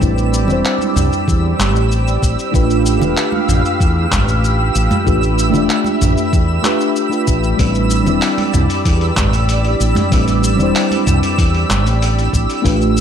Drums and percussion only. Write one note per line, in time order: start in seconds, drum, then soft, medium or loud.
0.01 kick loud
0.01 shaker soft
0.18 shaker soft
0.34 shaker medium
0.48 low conga medium
0.48 shaker soft
0.65 clap medium
0.65 shaker soft
0.78 high conga medium
0.78 shaker soft
0.97 mid tom medium
0.97 shaker medium
1.13 shaker soft
1.28 kick loud
1.28 shaker soft
1.59 clap medium
1.59 high conga medium
1.59 shaker medium
1.76 shaker soft
1.92 shaker soft
2.08 shaker soft
2.22 kick loud
2.22 shaker medium
2.39 shaker soft
2.54 kick loud
2.54 shaker soft
2.71 shaker soft
2.86 shaker medium
3.01 low conga medium
3.01 shaker soft
3.17 clap medium
3.17 shaker soft
3.32 high conga medium
3.49 mid tom medium
3.49 shaker medium
3.66 shaker soft
3.80 kick loud
3.80 shaker soft
4.11 kick loud
4.11 clap medium
4.11 mid tom medium
4.11 high conga medium
4.11 shaker medium
4.29 shaker soft
4.44 shaker soft
4.75 shaker medium
4.91 mid tom medium
4.91 high conga medium
4.91 shaker soft
5.07 kick loud
5.07 shaker soft
5.23 shaker soft
5.39 shaker medium
5.54 low conga medium
5.54 shaker soft
5.70 clap medium
5.70 shaker soft
5.84 high conga medium
5.84 shaker soft
6.01 mid tom medium
6.01 shaker medium
6.18 shaker soft
6.33 kick loud
6.33 shaker soft
6.64 clap medium
6.64 high conga medium
6.64 shaker medium
6.81 shaker soft
6.96 shaker soft
7.12 shaker soft
7.28 kick medium
7.28 shaker medium
7.44 shaker soft
7.59 kick loud
7.59 open hi-hat medium
7.59 shaker soft
7.75 shaker soft
7.91 shaker medium
8.06 low conga medium
8.06 shaker soft
8.22 clap medium
8.22 open hi-hat medium
8.22 shaker soft
8.38 open hi-hat soft
8.38 high conga medium
8.54 mid tom medium
8.54 shaker medium
8.70 open hi-hat soft
8.70 shaker soft
8.85 kick loud
8.85 open hi-hat medium
8.85 shaker soft
9.01 open hi-hat soft
9.16 kick loud
9.16 clap medium
9.16 mid tom medium
9.16 high conga medium
9.16 shaker medium
9.33 open hi-hat soft
9.33 shaker soft
9.49 open hi-hat medium
9.49 shaker soft
9.64 open hi-hat soft
9.81 shaker medium
9.95 mid tom medium
9.95 open hi-hat soft
9.95 high conga medium
9.95 shaker soft
10.12 kick loud
10.12 open hi-hat medium
10.12 shaker soft
10.28 open hi-hat soft
10.28 shaker soft
10.44 shaker medium
10.59 low conga medium
10.59 shaker soft
10.76 clap medium
10.76 open hi-hat medium
10.76 shaker soft
10.91 open hi-hat soft
10.91 high conga medium
10.91 shaker soft
11.07 mid tom medium
11.07 shaker medium
11.23 open hi-hat soft
11.23 shaker soft
11.38 kick loud
11.38 open hi-hat medium
11.38 shaker soft
11.54 open hi-hat soft
11.69 clap medium
11.69 high conga medium
11.69 shaker medium
11.87 open hi-hat soft
11.87 shaker soft
12.02 open hi-hat medium
12.02 shaker soft
12.19 open hi-hat soft
12.19 shaker soft
12.33 kick medium
12.33 shaker medium
12.50 open hi-hat soft
12.50 shaker soft
12.65 kick loud
12.65 open hi-hat medium
12.65 shaker soft
12.82 shaker soft
12.97 shaker medium